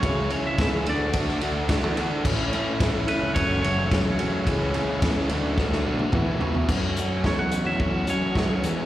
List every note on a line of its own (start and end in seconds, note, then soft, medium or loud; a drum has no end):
0.00 0.28 C#2 medium
0.00 0.29 C#3 medium
0.00 0.29 E3 loud
0.00 0.41 C#5 medium
0.00 0.84 C#5 medium
0.00 0.84 C#6 medium
0.00 kick loud
0.00 ride medium
0.04 0.30 G#3 loud
0.04 0.31 C#4 loud
0.04 0.31 E4 loud
0.04 0.86 G#4 medium
0.04 0.31 G#4 loud
0.04 0.86 E5 medium
0.30 0.58 C#3 medium
0.30 0.58 E3 medium
0.30 0.59 G#3 medium
0.30 0.59 C#4 loud
0.30 0.59 E4 medium
0.30 0.60 G#4 medium
0.30 ride medium
0.47 0.60 E5 medium
0.58 0.71 E2 medium
0.58 0.85 C#3 medium
0.58 0.85 E3 medium
0.58 0.85 G#3 medium
0.58 0.86 C#4 loud
0.58 0.86 E4 medium
0.58 0.86 G#4 medium
0.58 0.69 E5 medium
0.58 kick loud
0.58 snare loud
0.58 ride medium
0.86 1.37 D2 medium
0.86 1.13 D3 loud
0.86 1.13 A3 loud
0.86 1.14 D4 loud
0.86 1.14 F#4 loud
0.86 3.34 A4 medium
0.86 2.24 D5 medium
0.86 1.40 D5 medium
0.86 2.24 F#5 medium
0.86 2.24 D6 medium
0.86 ride medium
1.13 1.41 D3 loud
1.13 1.41 A3 medium
1.13 1.42 D4 loud
1.13 1.42 F#4 loud
1.13 kick loud
1.13 ride loud
1.28 snare soft
1.41 1.84 D2 medium
1.41 1.67 D3 medium
1.41 1.69 A3 medium
1.41 1.69 D4 medium
1.41 1.69 F#4 medium
1.41 ride medium
1.69 1.96 D3 medium
1.69 1.96 A3 medium
1.69 1.97 D4 medium
1.69 1.97 F#4 medium
1.69 kick loud
1.69 snare loud
1.69 ride loud
1.84 2.09 E2 medium
1.97 2.23 D3 medium
1.97 2.24 A3 medium
1.97 2.24 D4 medium
1.97 2.24 F#4 medium
1.97 ride medium
2.24 2.50 A1 loud
2.24 2.52 A2 loud
2.24 2.52 E3 medium
2.24 2.53 A3 loud
2.24 2.53 C#4 loud
2.24 2.54 E4 loud
2.24 5.28 C#5 medium
2.24 3.35 E5 medium
2.24 4.45 C#6 medium
2.24 kick loud
2.24 crash loud
2.53 2.79 A2 medium
2.53 2.80 E3 loud
2.53 2.80 A3 loud
2.53 2.81 C#4 medium
2.53 2.81 E4 loud
2.53 ride medium
2.80 3.05 A1 medium
2.80 3.07 A2 medium
2.80 3.08 E3 medium
2.80 3.08 A3 loud
2.80 3.09 C#4 medium
2.80 3.10 E4 medium
2.80 kick loud
2.80 snare loud
2.80 ride loud
3.08 3.35 A2 medium
3.08 3.35 E3 loud
3.08 3.35 A3 medium
3.08 3.36 C#4 loud
3.08 3.36 E4 loud
3.08 3.34 B4 medium
3.08 ride medium
3.22 3.35 C#2 medium
3.35 3.61 F#1 loud
3.35 3.63 F#2 medium
3.35 3.63 C#3 loud
3.35 3.64 F#3 loud
3.35 3.65 A3 loud
3.35 3.65 C#4 loud
3.35 3.64 F#4 loud
3.35 4.46 A4 medium
3.35 3.61 C#5 loud
3.35 4.46 F#5 medium
3.35 kick loud
3.35 ride loud
3.62 4.01 F#1 medium
3.62 3.90 F#2 medium
3.62 3.91 C#3 medium
3.62 3.92 F#3 medium
3.62 3.92 A3 medium
3.62 3.93 C#4 medium
3.62 3.91 F#4 loud
3.62 6.09 C#5 loud
3.62 ride medium
3.91 4.18 F#2 medium
3.91 4.18 C#3 medium
3.91 4.19 F#3 medium
3.91 4.20 A3 medium
3.91 4.21 C#4 loud
3.91 4.19 F#4 medium
3.91 kick loud
3.91 snare loud
3.91 ride medium
4.06 4.31 E1 medium
4.19 4.46 F#2 medium
4.19 4.45 C#3 medium
4.19 4.46 F#3 medium
4.19 4.46 A3 medium
4.19 4.47 C#4 medium
4.19 4.46 F#4 medium
4.19 ride medium
4.46 4.72 C#2 medium
4.46 4.74 C#3 medium
4.46 4.75 E3 loud
4.46 4.76 G#3 loud
4.46 4.76 C#4 loud
4.46 4.75 E4 loud
4.46 5.29 G#4 medium
4.46 5.29 E5 medium
4.46 5.30 C#6 medium
4.46 kick loud
4.46 ride medium
4.74 5.02 C#3 medium
4.74 5.03 E3 medium
4.74 5.04 G#3 medium
4.74 5.04 C#4 loud
4.74 5.02 E4 loud
4.74 ride medium
5.02 5.15 E2 medium
5.02 5.29 C#3 medium
5.02 5.30 E3 medium
5.02 5.30 G#3 medium
5.02 5.30 C#4 medium
5.02 5.29 E4 loud
5.02 kick loud
5.02 snare loud
5.02 ride loud
5.29 5.80 D2 medium
5.29 5.57 D3 medium
5.29 5.58 F#3 loud
5.29 5.58 A3 loud
5.29 6.12 D4 medium
5.29 5.59 D4 loud
5.29 6.67 F#4 medium
5.29 5.57 F#4 loud
5.29 6.12 A4 medium
5.29 6.13 A5 medium
5.29 ride medium
5.58 5.85 D3 medium
5.58 5.85 F#3 loud
5.58 5.86 A3 loud
5.58 5.87 D4 loud
5.58 5.85 F#4 loud
5.58 kick loud
5.58 snare medium
5.72 snare medium
5.86 5.99 B1 medium
5.86 6.12 D3 medium
5.86 6.12 F#3 medium
5.86 6.13 A3 medium
5.86 6.13 D4 loud
5.86 6.12 F#4 loud
5.99 high tom medium
6.12 6.30 E2 medium
6.12 6.39 E2 medium
6.12 6.40 B2 medium
6.12 6.40 E3 medium
6.12 6.40 F#3 loud
6.12 6.41 B3 loud
6.12 6.41 E4 loud
6.12 6.41 F#4 loud
6.12 6.69 B4 medium
6.12 6.69 E5 medium
6.12 6.69 B5 medium
6.12 kick loud
6.12 mid tom medium
6.28 6.53 C#2 medium
6.40 6.67 E2 medium
6.40 6.67 B2 medium
6.40 6.67 E3 medium
6.40 6.67 F#3 medium
6.40 6.68 B3 medium
6.40 6.68 E4 medium
6.40 6.68 F#4 loud
6.40 floor tom medium
6.55 floor tom medium
6.68 8.08 F#2 medium
6.68 7.19 F#2 medium
6.68 6.96 F#3 medium
6.68 6.97 A3 medium
6.68 6.98 C#4 medium
6.68 7.00 F#4 loud
6.68 8.62 A4 medium
6.68 8.62 C#5 medium
6.68 8.86 F#5 medium
6.68 8.62 C#6 medium
6.68 kick loud
6.68 crash loud
6.96 7.23 F#3 medium
6.96 7.23 A3 medium
6.96 7.25 C#4 medium
6.96 7.78 F#4 medium
6.96 closed hi-hat medium
7.00 7.26 F#4 medium
7.24 7.62 E2 medium
7.24 7.50 F#3 medium
7.24 7.39 A3 medium
7.24 7.38 C#4 medium
7.24 7.36 F#4 loud
7.24 7.39 C#5 medium
7.24 kick loud
7.24 snare loud
7.37 7.50 A3 medium
7.37 7.51 C#4 medium
7.37 7.51 F#4 medium
7.37 7.66 F#5 medium
7.51 8.63 A3 medium
7.51 muted overdriven electric guitar stroke soft
7.51 closed hi-hat loud
7.65 8.04 E2 medium
7.65 7.79 A3 medium
7.65 7.80 C#4 medium
7.65 7.81 F#4 medium
7.65 8.07 E5 medium
7.79 8.05 F#3 medium
7.79 7.94 A3 medium
7.79 7.93 C#4 medium
7.79 7.91 F#4 medium
7.79 kick loud
7.92 8.06 A3 medium
7.92 8.08 C#4 medium
7.92 8.09 F#4 medium
8.06 8.34 F#3 medium
8.06 8.33 F#3 medium
8.06 8.35 A3 medium
8.06 8.36 C#4 medium
8.06 8.37 F#4 medium
8.06 8.86 C#5 medium
8.06 closed hi-hat loud
8.35 8.62 F#3 medium
8.35 8.51 A3 medium
8.35 8.50 C#4 medium
8.35 8.48 F#4 loud
8.35 kick loud
8.35 snare loud
8.49 8.62 F#3 medium
8.49 8.64 A3 medium
8.49 8.63 C#4 medium
8.49 8.62 F#4 medium
8.63 8.86 E2 medium
8.63 8.86 E2 loud
8.63 8.86 E3 medium
8.63 8.79 G#3 medium
8.63 8.78 B3 medium
8.63 8.76 E4 medium
8.63 8.86 G#4 medium
8.63 8.86 E5 medium
8.63 8.86 B5 medium
8.63 closed hi-hat loud
8.77 8.86 G#3 medium
8.77 8.86 B3 medium
8.77 8.86 E4 medium